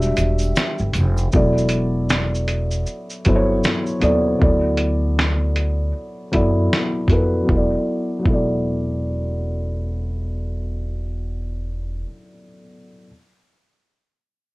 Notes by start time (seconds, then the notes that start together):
Already playing: E1 G3 D4 F#4 G4 E5
0.02 shaker
0.17 E1, closed hi-hat, shaker
0.39 shaker
0.42 shaker
0.56 snare, shaker
0.78 G1, shaker
0.94 F1, closed hi-hat, shaker
1.17 shaker
1.32 E1 F#3 B3 E4 A4 D5, kick, shaker
1.58 shaker
1.69 closed hi-hat, shaker
2.10 snare, shaker
2.35 shaker
2.48 closed hi-hat, shaker
2.71 shaker
2.87 shaker
3.10 shaker
3.25 G1 F#3 B3 E4 A4 C5, kick, closed hi-hat, shaker
3.35 C#5
3.64 snare, shaker
3.86 shaker
4.00 D#2 F#3 B3 E4 A4 D5, closed hi-hat, shaker
4.39 D2 F#3 B3 E4 A4 D5, kick
4.77 closed hi-hat
5.19 snare
5.56 closed hi-hat
6.31 F#2 F#3 B3 E4 A4 D5, kick, closed hi-hat
6.73 snare
7.08 F2 B3 E4 F#4 A4, kick, closed hi-hat
7.12 B4
7.42 F#3 B3
7.49 E1 E4, kick
7.53 A4 D5
8.19 F#3 B3
8.26 E1 E4, kick
8.30 A4 D5